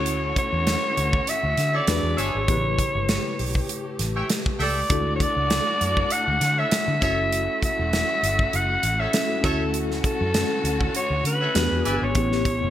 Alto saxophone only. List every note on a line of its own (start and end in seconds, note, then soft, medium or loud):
0.00 0.34 C#5 medium
0.38 1.31 C#5 loud
1.29 1.77 E5 loud
1.75 2.19 D5 loud
2.18 4.00 C#5 loud
4.62 5.12 D5 medium
5.16 5.24 C#5 medium
5.22 6.14 D5 loud
6.12 6.60 F#5 loud
6.59 7.02 E5 loud
7.03 7.59 E5 loud
7.65 8.57 E5 loud
8.56 9.01 F#5 loud
9.00 9.47 E5 loud
9.45 9.78 A4 medium
10.06 10.92 A4 loud
10.96 11.24 C#5 loud
11.27 12.05 B4 loud
12.04 12.70 C#5 medium